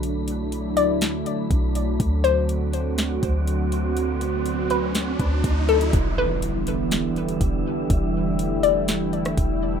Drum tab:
HH |x-x-x-x-x-x-x-x-|x-x-x-x-x-x-x-x-|x-x-x-x-x-x-x-xx|x---x-x-x-xxx---|
SD |--------o-------|--------o-------|--------o-------|--------o-------|
BD |------------o---|o---------o-----|----------o-o---|o-----------o---|

HH |x---x-x-x-xxx---|
SD |--------o--r----|
BD |o-----------o---|